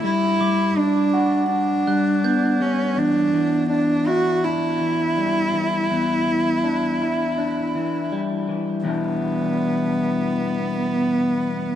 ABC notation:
X:1
M:4/4
L:1/8
Q:1/4=82
K:Em
V:1 name="Glockenspiel"
z d'2 z2 f' g'2 | z8 | z8 | z8 |]
V:2 name="Cello"
E2 D2 D3 ^C | D2 D F E4- | E6 z2 | B,8 |]
V:3 name="Clean electric guitar" clef=bass
G, G, D F2 G, B, G, | E,, E, D E D E, G, E, | E,, E, D E D E, G, E, | [E,,B,,E,G,DE]8 |]